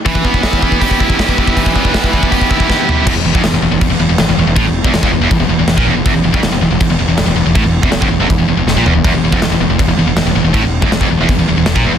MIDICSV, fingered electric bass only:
0, 0, Header, 1, 2, 480
1, 0, Start_track
1, 0, Tempo, 374298
1, 71, Time_signature, 4, 2, 24, 8
1, 15367, End_track
2, 0, Start_track
2, 0, Title_t, "Fingered electric bass"
2, 0, Program_c, 0, 33
2, 3932, Note_on_c, 0, 28, 96
2, 4037, Note_off_c, 0, 28, 0
2, 4045, Note_on_c, 0, 28, 86
2, 4149, Note_off_c, 0, 28, 0
2, 4157, Note_on_c, 0, 28, 76
2, 4273, Note_off_c, 0, 28, 0
2, 4295, Note_on_c, 0, 29, 90
2, 4388, Note_off_c, 0, 29, 0
2, 4395, Note_on_c, 0, 28, 92
2, 4513, Note_off_c, 0, 28, 0
2, 4526, Note_on_c, 0, 28, 77
2, 4634, Note_off_c, 0, 28, 0
2, 4642, Note_on_c, 0, 28, 80
2, 4749, Note_off_c, 0, 28, 0
2, 4757, Note_on_c, 0, 28, 77
2, 4873, Note_off_c, 0, 28, 0
2, 4890, Note_on_c, 0, 28, 67
2, 4990, Note_off_c, 0, 28, 0
2, 4998, Note_on_c, 0, 28, 85
2, 5114, Note_off_c, 0, 28, 0
2, 5122, Note_on_c, 0, 28, 80
2, 5236, Note_off_c, 0, 28, 0
2, 5246, Note_on_c, 0, 28, 66
2, 5358, Note_off_c, 0, 28, 0
2, 5364, Note_on_c, 0, 28, 87
2, 5477, Note_off_c, 0, 28, 0
2, 5486, Note_on_c, 0, 28, 77
2, 5598, Note_off_c, 0, 28, 0
2, 5605, Note_on_c, 0, 28, 90
2, 5717, Note_off_c, 0, 28, 0
2, 5726, Note_on_c, 0, 28, 79
2, 5838, Note_off_c, 0, 28, 0
2, 5850, Note_on_c, 0, 33, 107
2, 5949, Note_off_c, 0, 33, 0
2, 5956, Note_on_c, 0, 28, 83
2, 6184, Note_off_c, 0, 28, 0
2, 6212, Note_on_c, 0, 28, 91
2, 6311, Note_off_c, 0, 28, 0
2, 6319, Note_on_c, 0, 28, 88
2, 6433, Note_off_c, 0, 28, 0
2, 6450, Note_on_c, 0, 29, 93
2, 6549, Note_off_c, 0, 29, 0
2, 6557, Note_on_c, 0, 28, 78
2, 6661, Note_off_c, 0, 28, 0
2, 6668, Note_on_c, 0, 28, 86
2, 6787, Note_off_c, 0, 28, 0
2, 6807, Note_on_c, 0, 28, 72
2, 6902, Note_off_c, 0, 28, 0
2, 6909, Note_on_c, 0, 28, 87
2, 7021, Note_off_c, 0, 28, 0
2, 7028, Note_on_c, 0, 28, 70
2, 7147, Note_off_c, 0, 28, 0
2, 7157, Note_on_c, 0, 28, 70
2, 7263, Note_off_c, 0, 28, 0
2, 7271, Note_on_c, 0, 28, 76
2, 7388, Note_off_c, 0, 28, 0
2, 7411, Note_on_c, 0, 34, 102
2, 7515, Note_off_c, 0, 34, 0
2, 7523, Note_on_c, 0, 28, 115
2, 7635, Note_off_c, 0, 28, 0
2, 7644, Note_on_c, 0, 28, 76
2, 7755, Note_off_c, 0, 28, 0
2, 7771, Note_on_c, 0, 28, 104
2, 7879, Note_off_c, 0, 28, 0
2, 7886, Note_on_c, 0, 28, 84
2, 7996, Note_off_c, 0, 28, 0
2, 8004, Note_on_c, 0, 28, 84
2, 8115, Note_off_c, 0, 28, 0
2, 8130, Note_on_c, 0, 29, 100
2, 8229, Note_off_c, 0, 29, 0
2, 8237, Note_on_c, 0, 28, 96
2, 8351, Note_off_c, 0, 28, 0
2, 8365, Note_on_c, 0, 28, 83
2, 8475, Note_off_c, 0, 28, 0
2, 8484, Note_on_c, 0, 28, 86
2, 8594, Note_off_c, 0, 28, 0
2, 8607, Note_on_c, 0, 28, 86
2, 8716, Note_off_c, 0, 28, 0
2, 8728, Note_on_c, 0, 28, 66
2, 8836, Note_off_c, 0, 28, 0
2, 8852, Note_on_c, 0, 28, 91
2, 8958, Note_off_c, 0, 28, 0
2, 8969, Note_on_c, 0, 28, 73
2, 9077, Note_off_c, 0, 28, 0
2, 9082, Note_on_c, 0, 28, 64
2, 9193, Note_off_c, 0, 28, 0
2, 9209, Note_on_c, 0, 28, 85
2, 9313, Note_off_c, 0, 28, 0
2, 9321, Note_on_c, 0, 28, 88
2, 9432, Note_off_c, 0, 28, 0
2, 9450, Note_on_c, 0, 28, 85
2, 9557, Note_off_c, 0, 28, 0
2, 9567, Note_on_c, 0, 28, 88
2, 9675, Note_off_c, 0, 28, 0
2, 9684, Note_on_c, 0, 33, 95
2, 9794, Note_off_c, 0, 33, 0
2, 9810, Note_on_c, 0, 28, 86
2, 10028, Note_off_c, 0, 28, 0
2, 10044, Note_on_c, 0, 28, 92
2, 10153, Note_off_c, 0, 28, 0
2, 10170, Note_on_c, 0, 28, 92
2, 10277, Note_off_c, 0, 28, 0
2, 10287, Note_on_c, 0, 29, 100
2, 10395, Note_off_c, 0, 29, 0
2, 10412, Note_on_c, 0, 28, 76
2, 10514, Note_off_c, 0, 28, 0
2, 10522, Note_on_c, 0, 28, 96
2, 10632, Note_off_c, 0, 28, 0
2, 10646, Note_on_c, 0, 28, 67
2, 10747, Note_off_c, 0, 28, 0
2, 10754, Note_on_c, 0, 28, 82
2, 10863, Note_off_c, 0, 28, 0
2, 10871, Note_on_c, 0, 28, 73
2, 10976, Note_off_c, 0, 28, 0
2, 10984, Note_on_c, 0, 28, 72
2, 11098, Note_off_c, 0, 28, 0
2, 11105, Note_on_c, 0, 28, 81
2, 11223, Note_off_c, 0, 28, 0
2, 11235, Note_on_c, 0, 34, 97
2, 11348, Note_off_c, 0, 34, 0
2, 11356, Note_on_c, 0, 28, 98
2, 11468, Note_off_c, 0, 28, 0
2, 11476, Note_on_c, 0, 28, 89
2, 11588, Note_off_c, 0, 28, 0
2, 11601, Note_on_c, 0, 28, 103
2, 11708, Note_off_c, 0, 28, 0
2, 11716, Note_on_c, 0, 28, 89
2, 11828, Note_off_c, 0, 28, 0
2, 11834, Note_on_c, 0, 28, 76
2, 11947, Note_off_c, 0, 28, 0
2, 11959, Note_on_c, 0, 29, 99
2, 12065, Note_off_c, 0, 29, 0
2, 12073, Note_on_c, 0, 28, 89
2, 12179, Note_off_c, 0, 28, 0
2, 12186, Note_on_c, 0, 28, 86
2, 12296, Note_off_c, 0, 28, 0
2, 12303, Note_on_c, 0, 28, 87
2, 12413, Note_off_c, 0, 28, 0
2, 12421, Note_on_c, 0, 28, 74
2, 12540, Note_off_c, 0, 28, 0
2, 12558, Note_on_c, 0, 28, 71
2, 12652, Note_off_c, 0, 28, 0
2, 12660, Note_on_c, 0, 28, 93
2, 12772, Note_off_c, 0, 28, 0
2, 12779, Note_on_c, 0, 28, 73
2, 12894, Note_off_c, 0, 28, 0
2, 12901, Note_on_c, 0, 28, 73
2, 13017, Note_off_c, 0, 28, 0
2, 13024, Note_on_c, 0, 28, 77
2, 13137, Note_off_c, 0, 28, 0
2, 13145, Note_on_c, 0, 28, 84
2, 13257, Note_off_c, 0, 28, 0
2, 13265, Note_on_c, 0, 28, 86
2, 13381, Note_off_c, 0, 28, 0
2, 13391, Note_on_c, 0, 28, 82
2, 13504, Note_off_c, 0, 28, 0
2, 13520, Note_on_c, 0, 33, 93
2, 13624, Note_off_c, 0, 33, 0
2, 13632, Note_on_c, 0, 28, 83
2, 13856, Note_off_c, 0, 28, 0
2, 13883, Note_on_c, 0, 28, 98
2, 13986, Note_off_c, 0, 28, 0
2, 13993, Note_on_c, 0, 28, 80
2, 14106, Note_off_c, 0, 28, 0
2, 14115, Note_on_c, 0, 29, 90
2, 14227, Note_off_c, 0, 29, 0
2, 14241, Note_on_c, 0, 28, 77
2, 14349, Note_off_c, 0, 28, 0
2, 14364, Note_on_c, 0, 28, 98
2, 14468, Note_off_c, 0, 28, 0
2, 14476, Note_on_c, 0, 28, 80
2, 14587, Note_off_c, 0, 28, 0
2, 14605, Note_on_c, 0, 28, 84
2, 14711, Note_off_c, 0, 28, 0
2, 14732, Note_on_c, 0, 28, 66
2, 14835, Note_off_c, 0, 28, 0
2, 14843, Note_on_c, 0, 28, 70
2, 14950, Note_off_c, 0, 28, 0
2, 14955, Note_on_c, 0, 28, 76
2, 15066, Note_off_c, 0, 28, 0
2, 15082, Note_on_c, 0, 34, 100
2, 15183, Note_off_c, 0, 34, 0
2, 15190, Note_on_c, 0, 28, 113
2, 15303, Note_off_c, 0, 28, 0
2, 15309, Note_on_c, 0, 28, 76
2, 15367, Note_off_c, 0, 28, 0
2, 15367, End_track
0, 0, End_of_file